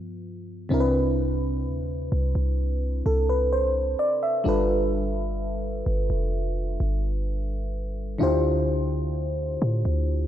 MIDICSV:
0, 0, Header, 1, 3, 480
1, 0, Start_track
1, 0, Tempo, 937500
1, 365, Time_signature, 4, 2, 24, 8
1, 5260, End_track
2, 0, Start_track
2, 0, Title_t, "FM electric piano"
2, 0, Program_c, 0, 5
2, 0, Control_c, 0, 64, 127
2, 0, Note_on_c, 0, 43, 44
2, 0, Note_on_c, 0, 53, 42
2, 0, Note_on_c, 0, 59, 51
2, 354, Note_on_c, 0, 48, 69
2, 361, Note_on_c, 0, 60, 68
2, 366, Note_on_c, 0, 62, 65
2, 371, Note_on_c, 0, 64, 68
2, 372, Note_off_c, 0, 59, 0
2, 372, Control_c, 0, 64, 0
2, 375, Note_off_c, 0, 43, 0
2, 376, Note_off_c, 0, 53, 0
2, 378, Note_on_c, 0, 70, 69
2, 405, Note_off_c, 0, 70, 0
2, 411, Note_on_c, 0, 71, 81
2, 470, Control_c, 0, 64, 127
2, 1567, Note_off_c, 0, 71, 0
2, 1567, Note_on_c, 0, 69, 62
2, 1680, Note_off_c, 0, 69, 0
2, 1687, Note_on_c, 0, 71, 64
2, 1800, Note_off_c, 0, 71, 0
2, 1805, Note_on_c, 0, 72, 65
2, 2033, Note_off_c, 0, 72, 0
2, 2044, Note_on_c, 0, 74, 68
2, 2158, Note_off_c, 0, 74, 0
2, 2164, Note_on_c, 0, 76, 56
2, 2259, Note_off_c, 0, 48, 0
2, 2262, Note_off_c, 0, 60, 0
2, 2265, Note_off_c, 0, 62, 0
2, 2268, Note_off_c, 0, 64, 0
2, 2273, Note_on_c, 0, 55, 73
2, 2279, Note_on_c, 0, 62, 69
2, 2285, Note_on_c, 0, 65, 64
2, 2292, Control_c, 0, 64, 0
2, 2292, Note_on_c, 0, 69, 69
2, 2297, Note_on_c, 0, 71, 82
2, 2387, Control_c, 0, 64, 127
2, 2393, Note_off_c, 0, 76, 0
2, 4179, Note_off_c, 0, 55, 0
2, 4181, Note_off_c, 0, 62, 0
2, 4184, Note_off_c, 0, 65, 0
2, 4188, Note_off_c, 0, 69, 0
2, 4190, Note_off_c, 0, 71, 0
2, 4191, Note_on_c, 0, 50, 74
2, 4195, Note_on_c, 0, 62, 70
2, 4200, Note_on_c, 0, 64, 70
2, 4205, Note_on_c, 0, 65, 70
2, 4210, Note_on_c, 0, 67, 65
2, 4211, Control_c, 0, 64, 0
2, 4214, Note_on_c, 0, 72, 84
2, 4298, Control_c, 0, 64, 127
2, 5260, Note_off_c, 0, 50, 0
2, 5260, Note_off_c, 0, 62, 0
2, 5260, Note_off_c, 0, 64, 0
2, 5260, Note_off_c, 0, 65, 0
2, 5260, Note_off_c, 0, 67, 0
2, 5260, Note_off_c, 0, 72, 0
2, 5260, End_track
3, 0, Start_track
3, 0, Title_t, "808-style bass"
3, 0, Program_c, 1, 38
3, 365, Note_on_c, 1, 36, 105
3, 845, Note_on_c, 1, 38, 96
3, 853, Note_off_c, 1, 36, 0
3, 1073, Note_off_c, 1, 38, 0
3, 1086, Note_on_c, 1, 36, 96
3, 1201, Note_off_c, 1, 36, 0
3, 1204, Note_on_c, 1, 36, 98
3, 1550, Note_off_c, 1, 36, 0
3, 1566, Note_on_c, 1, 36, 96
3, 2026, Note_off_c, 1, 36, 0
3, 2284, Note_on_c, 1, 31, 106
3, 2984, Note_off_c, 1, 31, 0
3, 3002, Note_on_c, 1, 31, 96
3, 3119, Note_off_c, 1, 31, 0
3, 3123, Note_on_c, 1, 29, 93
3, 3470, Note_off_c, 1, 29, 0
3, 3483, Note_on_c, 1, 31, 100
3, 4183, Note_off_c, 1, 31, 0
3, 4203, Note_on_c, 1, 38, 100
3, 4904, Note_off_c, 1, 38, 0
3, 4924, Note_on_c, 1, 45, 101
3, 5040, Note_off_c, 1, 45, 0
3, 5045, Note_on_c, 1, 38, 98
3, 5260, Note_off_c, 1, 38, 0
3, 5260, End_track
0, 0, End_of_file